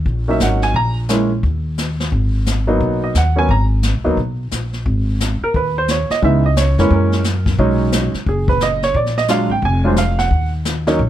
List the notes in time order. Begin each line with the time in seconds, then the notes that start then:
0.06 A#1, brush sweep, kick
0.28 F#3 A#3 C#4 D#4 E5
0.40 G#1 F#5, snare, hi-hat pedal
0.62 G#5, snare
0.74 A#1 A#5, brush sweep, kick
1.09 G#3 A#3 C#4 E4, snare, hi-hat pedal
1.43 D#2, brush sweep, kick
1.78 snare, hi-hat pedal
2.00 snare
2.12 G#1, brush sweep, kick
2.46 snare, hi-hat pedal
2.67 F#3 A#3 B3 D#4
2.80 B1, brush sweep, kick
3.04 D#5
3.15 D#2 F#5, snare, hi-hat pedal
3.36 F#3 A#3 B3 C#4 G#5
3.49 G#1 A#5, brush sweep, kick
3.83 snare, hi-hat pedal
3.94 B1
4.04 D#2 F#3 A#3 B3 D#4
4.17 B1, brush sweep, kick
4.51 A#1, snare, hi-hat pedal
4.73 snare
4.86 G#1, brush sweep, kick
5.20 snare, hi-hat pedal
5.41 A#4, muted upright bass stroke
5.54 D#2 B4, brush sweep, kick
5.78 C5
5.88 C#5, snare, hi-hat pedal
6.10 D#5, muted upright bass stroke, snare
6.22 C#2 E3 G#3 B3 D#4 E5, brush sweep, kick
6.46 D#5
6.56 C#5, snare, hi-hat pedal
6.78 F2 E3 G#3 A#3 C#4 B4, snare
6.91 F#2 A#4, brush sweep, kick
7.12 snare
7.24 snare, hi-hat pedal
7.46 kick, snare
7.58 B1 F#3 G#3 C#4 D#4, brush sweep, kick
7.92 snare, hi-hat pedal
8.14 muted upright bass stroke, snare
8.26 F#1 G#4, brush sweep, kick
8.48 B4, kick
8.60 D#5, snare, hi-hat pedal
8.82 C#5, snare
8.94 A#1 D5, brush sweep, kick
9.06 snare
9.18 D#5, snare
9.28 F#3 G#3 D4 F4 F5, snare, hi-hat pedal
9.49 G#1 G5
9.62 F1 G#5, brush sweep, kick
9.84 F#3 G#3 D4 F4 C5
9.96 F5, snare, hi-hat pedal
10.19 F#5, snare
10.31 D#2, brush sweep, kick
10.65 snare, hi-hat pedal
10.87 F#3 A#3 C#4 D#4, snare
10.99 A#1, brush sweep, kick